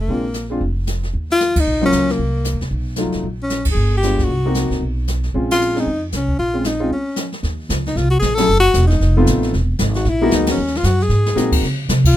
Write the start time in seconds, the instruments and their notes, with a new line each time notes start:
0.01 tenor saxophone A#3
0.08 upright bass A#1, grand piano G#3 C4 D4 F4, brush sweep, kick
0.34 snare, hi-hat pedal
0.50 grand piano G#3 C4 D4 F4
0.61 upright bass F1, brush sweep, kick
0.87 snare, hi-hat pedal
1.03 snare
1.14 upright bass D#2, brush sweep, kick
1.30 tenor saxophone F4, snare
1.40 snare, hi-hat pedal
1.56 upright bass D2, kick, ride
1.60 tenor saxophone D#4
1.66 upright bass A#1, brush sweep
1.81 grand piano F#3 A#3 C#4 F4
1.86 tenor saxophone C#4
1.92 upright bass C#2, snare, hi-hat pedal
2.09 tenor saxophone A#3, snare
2.19 upright bass C2, brush sweep, kick
2.44 snare, hi-hat pedal
2.53 upright bass D#2
2.61 upright bass C2, snare
2.70 upright bass B1, brush sweep, kick
2.96 grand piano F#3 A3 D#4 F4, snare, hi-hat pedal
3.05 upright bass D#2
3.12 upright bass B1, snare
3.23 upright bass A#1, brush sweep, kick
3.43 tenor saxophone C#4
3.50 snare, hi-hat pedal
3.65 upright bass G#1, kick, ride
3.71 upright bass G1, tenor saxophone G#4
3.76 brush sweep
3.97 tenor saxophone G4
4.03 grand piano G#3 B3 D4 F4, snare, hi-hat pedal
4.18 kick, snare
4.24 tenor saxophone F#4
4.29 upright bass C2, brush sweep
4.46 grand piano A#3 C4 D#4 F#4
4.54 snare, hi-hat pedal
4.70 upright bass A#1, snare
4.81 upright bass B1, brush sweep, kick
5.07 snare, hi-hat pedal
5.23 snare
5.34 upright bass A#1, grand piano G#3 C4 C#4 F4, brush sweep, kick
5.51 tenor saxophone F4, snare, ride
5.61 hi-hat pedal
5.75 grand piano G#3 C4 C#4 D#4, snare
5.80 tenor saxophone D#4
5.86 upright bass F2, brush sweep, kick
6.12 upright bass C2, tenor saxophone C#4, snare, hi-hat pedal
6.28 kick
6.39 upright bass A#1, tenor saxophone F4, brush sweep, kick
6.54 grand piano G#3 C4 C#4 F4
6.64 tenor saxophone D#4, snare, hi-hat pedal
6.80 grand piano G#3 C4 C#4 F4
6.90 tenor saxophone C#4, brush sweep, kick
7.16 snare, hi-hat pedal
7.32 snare
7.43 upright bass D#2, brush sweep, kick, snare
7.69 upright bass C#2, kick, snare, hi-hat pedal
7.86 tenor saxophone D#4, snare
7.96 upright bass C2, tenor saxophone F4, brush sweep, kick, snare
8.11 tenor saxophone F#4
8.19 upright bass A#1, tenor saxophone G#4, kick, snare, hi-hat pedal
8.35 grand piano F#3 A3 C#4, tenor saxophone A4, snare, ride
8.39 grand piano E4 G#4
8.48 upright bass F#1, brush sweep
8.60 tenor saxophone F#4
8.74 upright bass E1, kick, snare, hi-hat pedal
8.87 tenor saxophone D#4, snare
9.00 upright bass F1, brush sweep, kick, snare
9.17 grand piano A3 B3 C4 D#4 F4
9.26 upright bass A1, kick, snare, hi-hat pedal
9.43 snare
9.53 upright bass E1, brush sweep, kick, snare
9.79 upright bass G#1, kick, snare, hi-hat pedal
9.95 tenor saxophone F#4, snare
10.05 upright bass A#1, brush sweep, kick, snare
10.09 tenor saxophone E4
10.21 grand piano G#3 A#3 B3 D#4 F#4
10.31 upright bass D2, kick, snare, hi-hat pedal
10.35 tenor saxophone D#4
10.46 snare, ride
10.51 tenor saxophone C#4
10.57 upright bass D#2, brush sweep
10.67 snare
10.75 tenor saxophone F4, snare
10.83 upright bass F#2, tenor saxophone F#4, kick, snare, hi-hat pedal
11.00 tenor saxophone G#4, snare
11.09 upright bass G#2, snare
11.26 snare
11.35 upright bass A#2, grand piano G#3 A#3 C4 D#4 F#4, snare, hi-hat pedal
11.52 kick, crash
11.62 upright bass C#3, brush sweep, kick, snare
11.89 upright bass C3, kick, snare, hi-hat pedal
12.04 tenor saxophone F4, kick, crash
12.13 upright bass G#2